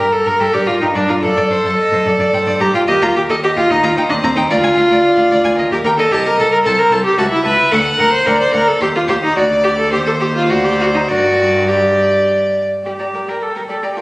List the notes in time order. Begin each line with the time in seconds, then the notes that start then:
Already playing: A#4
0.00 A#4
0.12 A4
0.26 G2 A#4
0.40 G2 G4 A4
0.54 G2 G4 D5
0.67 G2 F4 A#4
0.81 G2 D#4 G4
0.94 G2 D4 D5
1.08 G2 F4 A#4
1.22 F#2 A4 D5
1.37 F#2 D5
1.50 F#2 C5
1.64 F#2 A4
1.77 D#5
1.92 F#2 C5
2.05 F#2 A4 D5
2.19 F#2 D5
2.33 G2 C5 G5
2.46 G2 D5
2.60 G2 G4 A#5
2.74 G2 F4 G5
2.87 D#2 G4 A#4 D#5
3.01 D#2 F4 A#5
3.15 D#2 G4 G5
3.29 D#2 A4 D#5
3.44 G4 D#5
3.57 D#2 F4 G5
3.70 D#2 D#4 D#5
3.83 D#2 F4 A#5
3.96 D#2 D#4 C5 G5
4.09 D#2 D4 D#5
4.23 D#2 C4 A#5
4.36 D#2 D#4 G5
4.48 D2 F4 A#4 D5
4.63 D2 G#5
4.77 D2 F5
4.90 D2 D5
5.04 D5
5.18 D2 F5
5.31 D2 D5
5.44 D2 G#5
5.56 D#2 A#4 D#5
5.71 D#2 G4 A#4
5.84 D#2 A#4 G5
5.97 D#2 A4 D#5
6.10 C2 G4 D#5 A5
6.26 A#4
6.38 C2 A4 A5
6.52 A#4
6.64 C2 A4 C5 A5
6.79 A#4
6.91 C2 A4 A5
7.04 G4
7.18 C#2 F#4 E5 A5
7.32 E4
7.45 C#2 B4 A5
7.72 D2 A4 F#5
7.99 D2 A#4 F#5
8.13 C5
8.26 D2 A#4 D5 F#5
8.41 C5
8.53 D2 A#4 F#5
8.68 A4
8.80 D#2 G4 C5
8.96 F4
9.08 D#2 G4 C5
9.24 D#4
9.36 D2 F#4 D5
9.64 G4
9.78 A4
9.91 D#2 G4 C5
10.07 A4
10.20 G4
10.35 F4
10.48 D2 F#4 C5 D5
10.64 G4
10.80 F#4
10.94 D#4
11.08 G2 F#4 A#4 D5
11.68 G4 D5
12.85 G3 G4 D5
12.98 G3 D5 A#5
13.14 G3 A#4 G5
13.26 G3 G4 A#4 D5
13.42 A4
13.55 G3 A#4 G5
13.68 G3 G4 A4 D5
13.82 G3 G4 D5 A#5
13.95 G3 F4 A#4 G5